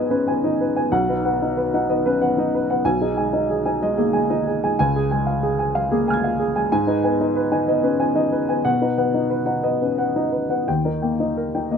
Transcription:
Already playing: G#2 B3 D#4 B4 D#5 G#5
0.10 C#4 B4
0.28 B3 G#5
0.44 D#4 D#5
0.61 B4
0.76 B3 G#5
0.92 B1 F#5
1.09 D#4 B4
1.25 B3 F#5
1.42 D#4 D#5
1.57 B4
1.74 D#4 F#5
1.90 B3 D#5
2.06 C#4 B4
2.22 B3 F#5
2.38 D#4 D#5
2.55 B4
2.70 B3 F#5
2.85 B1 G#5
3.01 D#4 G#4
3.17 G#3 G#5
3.33 D#4 D#5
3.50 G#4
3.66 D#4 G#5
3.82 G#3 D#5
3.98 A#3 G#4
4.13 G#3 G#5
4.30 D#4 D#5
4.47 G#4
4.64 G#3 G#5
4.79 C#2 G#5
4.96 G#4
5.11 G#3 G#5
5.27 F5
5.43 G#4
5.59 G#5
5.75 G#3 F5
5.92 A#3 G#4
6.08 G#3 G#5 F6
6.14 G#6
6.24 F5
6.40 G#4
6.56 G#3 G#5
6.72 G#2 G#5
6.87 D#4 B4
7.04 B3 G#5
7.21 D#4 D#5
7.36 B4
7.52 D#4 G#5
7.68 B3 D#5
7.83 C#4 B4
8.00 B3 G#5
8.15 D#4 D#5
8.32 B4
8.49 B3 G#5
8.65 B2 F#5
8.81 D#4 B4
8.98 B3 F#5
9.14 D#4 D#5
9.30 B4
9.46 D#4 F#5
9.63 B3 D#5
9.82 C#4 B4
9.98 B3 F#5
10.16 D#4 D#5
10.32 B4
10.49 B3 F#5
10.68 D#2 G5
10.85 D#4 A#4
11.02 A#3 G5
11.20 D#4 D#5
11.37 A#4
11.55 D#4 G5
11.71 A#3 D#5

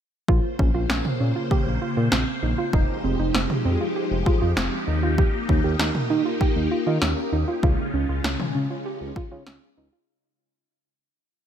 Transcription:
0.28 A#1 C#3 A#3 F4 C5, kick
0.59 A#1 C#4, kick
0.74 A#1 F4
0.90 A#1 C#4, snare
1.05 mid tom
1.20 A#2 C#4
1.36 F4
1.51 G4, kick
1.66 A#1
1.82 F4
1.97 A#2 F4
2.12 A#1 C4, snare
2.43 A#1 D#4
2.58 F4
2.73 F1 F3 G#3 D#4 G4, kick
3.04 F1 C4
3.19 F1 D#4
3.35 F1 C4, snare
3.50 mid tom
3.65 F2 C4
3.81 F4
3.96 G4
4.11 F1
4.26 F4, kick
4.42 F2 F4
4.57 F1 C4, snare
4.88 D#2 A#3 D#4
5.03 F4
5.18 G4, kick
5.49 D#2 D#4, kick
5.64 D#2 G4
5.79 D#2 D#4, snare
5.95 mid tom
6.10 D#3 D#4
6.25 F4
6.41 G4, kick
6.56 D#2
6.71 F4
6.87 D#3 F4
7.02 D#2 C#4, snare
7.33 D#2 D#4
7.48 F4
7.63 C#2 C#3 G#3 C#4 F4, kick
7.94 C#2 C#4
8.09 C#2 F4
8.24 C#2 C#4, snare
8.40 mid tom
8.55 C#3 C#4
8.70 F4
8.86 G4
9.01 C#2
9.16 F4, kick
9.31 C#3 F4
9.47 C#2 C#4, snare
9.77 C#2 D#4
9.93 F4

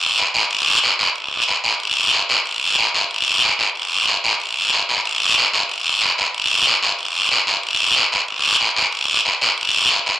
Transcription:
0.19 short guiro
0.34 short guiro
0.51 long guiro
0.83 short guiro
0.99 short guiro
1.16 long guiro
1.48 short guiro
1.64 short guiro
1.80 long guiro
2.13 short guiro
2.30 short guiro
2.46 long guiro
2.78 short guiro
2.95 short guiro
3.11 long guiro
3.43 short guiro
3.59 short guiro
3.75 long guiro
4.08 short guiro
4.24 short guiro
4.40 long guiro
4.73 short guiro
4.89 short guiro
5.05 long guiro
5.37 short guiro
5.53 short guiro
5.69 long guiro
6.02 short guiro
6.18 short guiro
6.34 long guiro
6.66 short guiro
6.83 short guiro
6.99 long guiro
7.31 short guiro
7.47 short guiro
7.63 long guiro
7.96 short guiro
8.12 short guiro
8.28 long guiro
8.60 short guiro
8.77 short guiro
8.93 long guiro
9.25 short guiro
9.41 short guiro
9.58 long guiro
9.90 short guiro
10.06 short guiro

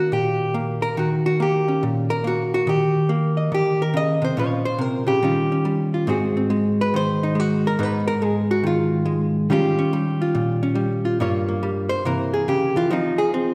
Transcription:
Already playing: D#3 A#3 C#4
0.00 F#4
0.12 A#2 G4
0.54 A#3
0.82 A#4
0.97 D#3 F#4
1.26 F#4
1.40 A#3 G4
1.68 C#4
1.83 A#2
2.10 A#4
2.24 A#3 F#4
2.54 F#4
2.67 D#3 G4
3.09 A#3
3.37 D#5
3.52 D#3 G4
3.82 A#4
3.94 C#3 D#5
4.22 C3 C5
4.37 A#2 F3 C#4 F4 C#5
4.65 C5
4.79 C3 A#4
5.07 C#3 G4
5.23 D#3 G3 C#4 F4
5.52 C#4
5.65 G3
5.94 F4
6.07 G#2 G#3 C4 F#4 G#4
6.37 C4
6.50 G#3
6.81 B4
6.94 D#3 C5
7.23 D#4
7.35 G#3
7.40 F#4
7.67 A#4
7.79 G#2 G#3 B3 D#4
7.83 B4
8.08 A#4
8.22 G#3 G#4
8.51 F#4
8.63 D#3 F4
9.06 G#3
9.50 D#3 G3 C#4 F4 G4
9.79 C#4
9.93 G3
10.22 F4
10.35 A#2
10.63 C#4
10.75 G3
11.05 F4
11.20 G2 G3 A#3 F4 C#5
11.49 A#3
11.63 G3
11.89 C5
12.05 C3 E3 A#3 A#4
12.34 G#4
12.48 C#3 G4
12.76 E3 F4
12.90 F3 C4 D#4
13.18 G#4
13.34 C4

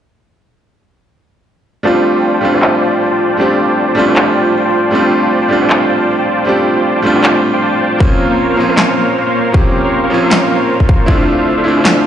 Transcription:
1.83 G3 A3 C4 D4 F4 C5 D5 G5 A5
1.87 F4
2.15 F4 C5 D5 G5 A5
2.34 F4 C5 D5 G5 A5
2.41 G3 A3 C4 D4 F4
2.53 F4 C5 D5 G5 A5
2.62 clap
2.81 F4 C5 D5 G5 A5
3.11 F4 C5 D5 G5 A5
3.37 G3 A3 C4 D4 F4 C5 D5 G5 A5
3.41 G4
3.69 F4 C5 D5 G5 A5
3.88 F4 C5 D5 G5 A5
3.95 G3 A3 C4 D4
3.99 F4
4.07 F4 C5 D5 G5 A5
4.16 clap
4.35 F4 C5 D5 G5 A5
4.65 F4 C5 D5 G5 A5
4.91 G3 A3 C4 D4 F4 C5 D5 G5 A5
4.95 F4
5.23 F4 C5 D5 G5 A5
5.42 F4 C5 D5 G5 A5
5.49 G3 A3 C4 D4 F4
5.61 F4 C5 D5 G5 A5
5.70 clap
5.89 F4 C5 D5 G5 A5
6.19 F4 C5 D5 G5 A5
6.45 G3 A3 C4 D4 F4 C5 D5 G5 A5
6.49 G4
6.76 F4 C5 D5 G5 A5
6.96 F4 C5 D5 G5 A5
7.02 G3 A3 C4 D4 F4
7.15 F4 C5 D5 G5 A5
7.24 clap
7.53 F4 C5 D5 G5 C6
7.62 F4 C5 D5 G5 A5
7.98 F3 A#3 C4 C#4, kick
8.03 F4
8.30 A#3 A#4 C5 C#5 F5
8.49 A#3 A#4 C5 C#5 F5
8.56 F3 A#3 C4 C#4
8.60 F4
8.69 A#3 A#4 C5 C#5 F5
8.77 snare, clap
8.97 A#3 A#4 C5 C#5 F5
9.26 A#3 A#4 C5 C#5 F5
9.52 F3 A#3 C4 C#4 C#5, kick
9.56 G4
9.84 A#3 A#4 C5 C#5 F5
10.03 A#3 A#4 C5 C#5 F5
10.10 F3 A#3 C4 C#4 F4
10.23 A#3 A#4 C5 C#5 F5
10.31 snare, clap
10.51 A#3 A#4 C5 C#5 F5
10.80 A#3 A#4 C5 C#5 F5, kick
10.89 kick
11.06 A3 C4 D4 E4 F4 A4 C5 E5 F5, kick
11.38 D4 A4 C5 E5 F5
11.57 D4 A4 C5 E5 F5
11.64 A3 C4 D4 E4 F4
11.76 D4 A4 C5 E5 F5
11.85 snare, clap

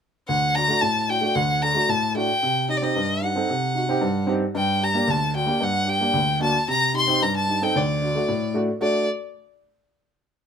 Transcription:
0.28 D2 F#5
0.55 D4 F#4 A#5
0.68 A3 D4 F#4
0.81 A2 A5
1.08 D4 F#4 G5
1.21 A3 D4 F#4
1.35 D2 F#5
1.62 D4 A4 A#5
1.75 A3 D4 F#4
1.89 A2 A5
2.15 A3 D4 F#4 G5
2.43 C3
2.69 D#4 G4 D#5
2.77 D5
2.82 C4 D#4 G4 D#5
2.96 G2
3.22 D#4 G4 F#5
3.36 C4 D#4 A4
3.50 C3
3.75 D#4 F#4
3.89 C4 D#4 G4
4.01 G2
4.27 C4 D#4 G4
4.55 G2 G5
4.81 D4 G4 A#5
4.94 A#3 D4 G4
5.07 D2 A5
5.34 D4 F#4 G5
5.46 A#3 D4 G4
5.60 G2 F#5
5.86 D4 G4 G5
6.00 A#3 D4 G4
6.13 D2
6.40 A#3 D4 F#4 A5
6.68 C3 A#5
6.94 D#4 G4 C6
7.08 C4 D#4 G4
7.22 G2 A#5
7.36 A5
7.48 D#4 G4
7.62 C4 D#4 A4 G5
7.75 D2 D5
8.02 D4 F#4
8.15 A3 D4 F#4
8.29 A2
8.54 A3 D4 F#4
8.81 A3 D4 F#4 D5

